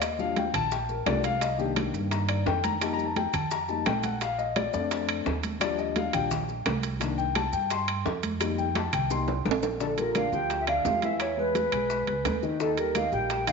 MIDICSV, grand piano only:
0, 0, Header, 1, 2, 480
1, 0, Start_track
1, 0, Key_signature, -2, "major"
1, 0, Tempo, 349650
1, 22, Time_signature, 4, 2, 24, 8
1, 18563, End_track
2, 0, Start_track
2, 0, Title_t, "Grand piano"
2, 0, Program_c, 0, 0
2, 28, Note_on_c, 0, 75, 78
2, 255, Note_on_c, 0, 53, 58
2, 258, Note_off_c, 0, 75, 0
2, 265, Note_on_c, 0, 55, 51
2, 267, Note_on_c, 0, 77, 84
2, 272, Note_on_c, 0, 62, 59
2, 498, Note_off_c, 0, 77, 0
2, 512, Note_on_c, 0, 79, 79
2, 578, Note_off_c, 0, 53, 0
2, 582, Note_off_c, 0, 55, 0
2, 586, Note_off_c, 0, 62, 0
2, 740, Note_off_c, 0, 79, 0
2, 745, Note_on_c, 0, 81, 119
2, 976, Note_off_c, 0, 81, 0
2, 988, Note_on_c, 0, 79, 72
2, 1218, Note_off_c, 0, 79, 0
2, 1223, Note_on_c, 0, 70, 67
2, 1453, Note_on_c, 0, 53, 54
2, 1455, Note_off_c, 0, 70, 0
2, 1458, Note_on_c, 0, 55, 52
2, 1464, Note_on_c, 0, 74, 93
2, 1466, Note_on_c, 0, 62, 64
2, 1673, Note_off_c, 0, 53, 0
2, 1676, Note_off_c, 0, 55, 0
2, 1680, Note_off_c, 0, 62, 0
2, 1696, Note_off_c, 0, 74, 0
2, 1700, Note_on_c, 0, 77, 100
2, 1934, Note_off_c, 0, 77, 0
2, 1942, Note_on_c, 0, 75, 81
2, 2172, Note_on_c, 0, 51, 51
2, 2175, Note_off_c, 0, 75, 0
2, 2179, Note_on_c, 0, 58, 51
2, 2181, Note_on_c, 0, 67, 81
2, 2188, Note_on_c, 0, 62, 62
2, 2325, Note_off_c, 0, 67, 0
2, 2903, Note_on_c, 0, 82, 82
2, 3135, Note_off_c, 0, 82, 0
2, 3142, Note_on_c, 0, 74, 64
2, 3374, Note_off_c, 0, 74, 0
2, 3384, Note_on_c, 0, 79, 102
2, 3615, Note_off_c, 0, 79, 0
2, 3622, Note_on_c, 0, 82, 102
2, 3801, Note_off_c, 0, 51, 0
2, 3805, Note_off_c, 0, 58, 0
2, 3809, Note_off_c, 0, 62, 0
2, 3854, Note_off_c, 0, 82, 0
2, 3855, Note_on_c, 0, 55, 57
2, 3863, Note_on_c, 0, 58, 52
2, 3868, Note_on_c, 0, 81, 81
2, 3870, Note_on_c, 0, 63, 59
2, 4020, Note_off_c, 0, 81, 0
2, 4028, Note_on_c, 0, 82, 104
2, 4177, Note_off_c, 0, 55, 0
2, 4180, Note_off_c, 0, 82, 0
2, 4181, Note_off_c, 0, 58, 0
2, 4185, Note_off_c, 0, 63, 0
2, 4186, Note_on_c, 0, 81, 81
2, 4339, Note_off_c, 0, 81, 0
2, 4345, Note_on_c, 0, 79, 83
2, 4576, Note_off_c, 0, 79, 0
2, 4582, Note_on_c, 0, 81, 91
2, 4814, Note_off_c, 0, 81, 0
2, 4825, Note_on_c, 0, 82, 100
2, 5056, Note_off_c, 0, 82, 0
2, 5057, Note_on_c, 0, 55, 45
2, 5061, Note_on_c, 0, 58, 42
2, 5061, Note_on_c, 0, 81, 87
2, 5067, Note_on_c, 0, 63, 55
2, 5275, Note_off_c, 0, 55, 0
2, 5277, Note_off_c, 0, 58, 0
2, 5280, Note_off_c, 0, 63, 0
2, 5294, Note_off_c, 0, 81, 0
2, 5307, Note_on_c, 0, 79, 92
2, 5537, Note_off_c, 0, 79, 0
2, 5545, Note_on_c, 0, 78, 75
2, 5776, Note_off_c, 0, 78, 0
2, 5788, Note_on_c, 0, 77, 87
2, 6017, Note_off_c, 0, 77, 0
2, 6020, Note_on_c, 0, 75, 84
2, 6253, Note_off_c, 0, 75, 0
2, 6264, Note_on_c, 0, 74, 80
2, 6482, Note_off_c, 0, 74, 0
2, 6492, Note_on_c, 0, 57, 60
2, 6501, Note_on_c, 0, 60, 55
2, 6503, Note_on_c, 0, 74, 89
2, 6510, Note_on_c, 0, 62, 66
2, 7171, Note_off_c, 0, 74, 0
2, 7180, Note_off_c, 0, 57, 0
2, 7185, Note_off_c, 0, 60, 0
2, 7189, Note_off_c, 0, 62, 0
2, 7691, Note_on_c, 0, 53, 56
2, 7699, Note_on_c, 0, 55, 53
2, 7705, Note_on_c, 0, 74, 84
2, 7709, Note_on_c, 0, 62, 63
2, 7935, Note_off_c, 0, 74, 0
2, 7945, Note_on_c, 0, 75, 82
2, 8175, Note_off_c, 0, 75, 0
2, 8188, Note_on_c, 0, 77, 81
2, 8396, Note_off_c, 0, 53, 0
2, 8400, Note_off_c, 0, 55, 0
2, 8406, Note_off_c, 0, 62, 0
2, 8416, Note_on_c, 0, 53, 52
2, 8417, Note_off_c, 0, 77, 0
2, 8421, Note_on_c, 0, 55, 45
2, 8424, Note_on_c, 0, 79, 99
2, 8426, Note_on_c, 0, 62, 61
2, 8633, Note_off_c, 0, 53, 0
2, 8636, Note_off_c, 0, 55, 0
2, 8639, Note_off_c, 0, 62, 0
2, 9091, Note_off_c, 0, 79, 0
2, 9608, Note_on_c, 0, 51, 57
2, 9616, Note_on_c, 0, 58, 53
2, 9625, Note_on_c, 0, 62, 61
2, 9853, Note_on_c, 0, 79, 97
2, 9932, Note_off_c, 0, 51, 0
2, 9936, Note_off_c, 0, 58, 0
2, 9941, Note_off_c, 0, 62, 0
2, 10088, Note_off_c, 0, 79, 0
2, 10096, Note_on_c, 0, 81, 99
2, 10329, Note_off_c, 0, 81, 0
2, 10332, Note_on_c, 0, 79, 101
2, 10567, Note_off_c, 0, 79, 0
2, 10580, Note_on_c, 0, 84, 96
2, 10811, Note_off_c, 0, 84, 0
2, 11530, Note_on_c, 0, 55, 60
2, 11539, Note_on_c, 0, 58, 52
2, 11546, Note_on_c, 0, 63, 61
2, 11779, Note_on_c, 0, 79, 87
2, 11852, Note_off_c, 0, 55, 0
2, 11857, Note_off_c, 0, 58, 0
2, 11860, Note_off_c, 0, 63, 0
2, 12010, Note_off_c, 0, 79, 0
2, 12029, Note_on_c, 0, 81, 93
2, 12255, Note_off_c, 0, 81, 0
2, 12263, Note_on_c, 0, 79, 93
2, 12492, Note_off_c, 0, 79, 0
2, 12492, Note_on_c, 0, 55, 46
2, 12498, Note_on_c, 0, 58, 40
2, 12501, Note_on_c, 0, 84, 88
2, 12504, Note_on_c, 0, 63, 49
2, 12643, Note_off_c, 0, 84, 0
2, 12709, Note_off_c, 0, 55, 0
2, 12713, Note_off_c, 0, 58, 0
2, 12716, Note_off_c, 0, 63, 0
2, 13456, Note_on_c, 0, 50, 71
2, 13461, Note_on_c, 0, 62, 72
2, 13467, Note_on_c, 0, 74, 75
2, 13652, Note_off_c, 0, 50, 0
2, 13655, Note_off_c, 0, 62, 0
2, 13659, Note_off_c, 0, 74, 0
2, 13697, Note_on_c, 0, 53, 66
2, 13702, Note_on_c, 0, 65, 68
2, 13704, Note_on_c, 0, 67, 61
2, 13893, Note_off_c, 0, 53, 0
2, 13896, Note_off_c, 0, 65, 0
2, 13897, Note_off_c, 0, 67, 0
2, 13936, Note_on_c, 0, 50, 72
2, 13937, Note_on_c, 0, 62, 72
2, 13940, Note_on_c, 0, 74, 66
2, 14132, Note_off_c, 0, 50, 0
2, 14133, Note_off_c, 0, 62, 0
2, 14135, Note_off_c, 0, 74, 0
2, 14177, Note_on_c, 0, 53, 72
2, 14180, Note_on_c, 0, 65, 72
2, 14182, Note_on_c, 0, 67, 72
2, 14570, Note_off_c, 0, 53, 0
2, 14572, Note_off_c, 0, 65, 0
2, 14573, Note_off_c, 0, 67, 0
2, 14655, Note_on_c, 0, 50, 73
2, 14659, Note_on_c, 0, 62, 74
2, 14661, Note_on_c, 0, 74, 77
2, 14852, Note_off_c, 0, 50, 0
2, 14854, Note_off_c, 0, 62, 0
2, 14856, Note_off_c, 0, 74, 0
2, 14890, Note_on_c, 0, 53, 73
2, 14894, Note_on_c, 0, 65, 69
2, 14898, Note_on_c, 0, 67, 73
2, 15089, Note_off_c, 0, 53, 0
2, 15091, Note_off_c, 0, 65, 0
2, 15094, Note_off_c, 0, 67, 0
2, 15130, Note_on_c, 0, 52, 76
2, 15136, Note_on_c, 0, 64, 76
2, 15141, Note_on_c, 0, 76, 72
2, 15526, Note_off_c, 0, 52, 0
2, 15530, Note_off_c, 0, 64, 0
2, 15533, Note_off_c, 0, 76, 0
2, 15612, Note_on_c, 0, 56, 67
2, 15618, Note_on_c, 0, 68, 69
2, 15621, Note_on_c, 0, 71, 66
2, 16007, Note_off_c, 0, 56, 0
2, 16011, Note_off_c, 0, 68, 0
2, 16013, Note_off_c, 0, 71, 0
2, 16091, Note_on_c, 0, 56, 79
2, 16095, Note_on_c, 0, 68, 73
2, 16102, Note_on_c, 0, 71, 70
2, 16487, Note_off_c, 0, 56, 0
2, 16490, Note_off_c, 0, 68, 0
2, 16493, Note_off_c, 0, 71, 0
2, 16577, Note_on_c, 0, 56, 68
2, 16584, Note_on_c, 0, 68, 67
2, 16588, Note_on_c, 0, 71, 69
2, 16971, Note_off_c, 0, 56, 0
2, 16975, Note_off_c, 0, 68, 0
2, 16977, Note_off_c, 0, 71, 0
2, 17058, Note_on_c, 0, 51, 82
2, 17061, Note_on_c, 0, 63, 74
2, 17068, Note_on_c, 0, 75, 75
2, 17255, Note_off_c, 0, 51, 0
2, 17256, Note_off_c, 0, 63, 0
2, 17261, Note_off_c, 0, 75, 0
2, 17297, Note_on_c, 0, 51, 76
2, 17304, Note_on_c, 0, 63, 69
2, 17308, Note_on_c, 0, 75, 74
2, 17494, Note_off_c, 0, 51, 0
2, 17498, Note_off_c, 0, 63, 0
2, 17501, Note_off_c, 0, 75, 0
2, 17539, Note_on_c, 0, 55, 69
2, 17542, Note_on_c, 0, 67, 65
2, 17548, Note_on_c, 0, 70, 62
2, 17735, Note_off_c, 0, 55, 0
2, 17737, Note_off_c, 0, 67, 0
2, 17741, Note_off_c, 0, 70, 0
2, 17777, Note_on_c, 0, 51, 72
2, 17782, Note_on_c, 0, 63, 72
2, 17788, Note_on_c, 0, 75, 70
2, 17974, Note_off_c, 0, 51, 0
2, 17977, Note_off_c, 0, 63, 0
2, 17981, Note_off_c, 0, 75, 0
2, 18015, Note_on_c, 0, 55, 74
2, 18020, Note_on_c, 0, 67, 70
2, 18025, Note_on_c, 0, 70, 72
2, 18410, Note_off_c, 0, 55, 0
2, 18413, Note_off_c, 0, 67, 0
2, 18416, Note_off_c, 0, 70, 0
2, 18495, Note_on_c, 0, 51, 74
2, 18498, Note_on_c, 0, 63, 83
2, 18500, Note_on_c, 0, 75, 81
2, 18563, Note_off_c, 0, 51, 0
2, 18563, Note_off_c, 0, 63, 0
2, 18563, Note_off_c, 0, 75, 0
2, 18563, End_track
0, 0, End_of_file